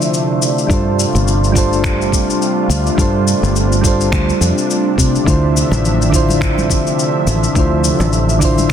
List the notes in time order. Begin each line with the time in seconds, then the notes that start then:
Already playing: C3 D3 F3 A3 D4 E4 F4 C5 E5
0.02 shaker
0.14 shaker
0.42 shaker
0.58 shaker
0.67 G2 G3 D4 F4, kick, shaker
0.71 G3 F4 A4 C5
0.99 shaker
1.15 G1, shaker
1.28 shaker
1.44 shaker
1.52 G3 D4 F4, kick
1.56 A4 C5, shaker
1.73 shaker
1.84 finger snap, kick, shaker
2.02 shaker
2.12 kick, shaker
2.30 shaker
2.42 shaker
2.69 D2, shaker
2.87 shaker
2.95 G2 G3 D4 F4, kick
2.99 A4 C5, shaker
3.28 shaker
3.43 G1, shaker
3.56 shaker
3.72 shaker
3.81 G3 D4 F4, kick, shaker
3.86 A4 C5
4.01 shaker
4.12 D2, finger snap, kick, shaker
4.29 shaker
4.41 F2, shaker
4.58 shaker
4.71 shaker
4.98 C3, kick, shaker
5.16 shaker
5.24 D2 D3 F3 D4 E4 E5, kick
5.28 A3 F4 C5, shaker
5.57 shaker
5.71 A1, high conga, low conga, shaker
5.85 shaker
6.02 shaker
6.10 D3 D4 E4, kick
6.14 F4 C5, shaker
6.29 high conga, shaker
6.41 finger snap, kick, shaker
6.58 high conga, shaker
6.69 kick, high conga, shaker
6.87 shaker
6.99 shaker
7.27 A1, low conga, shaker
7.44 shaker
7.53 D2 D3 D4 E4, kick, shaker
7.58 F4 C5
7.84 shaker
8.00 A1, high conga, low conga, shaker
8.13 shaker
8.29 shaker
8.39 D3 D4 E4, kick, shaker
8.43 F4 C5
8.58 high conga, shaker
8.70 finger snap, kick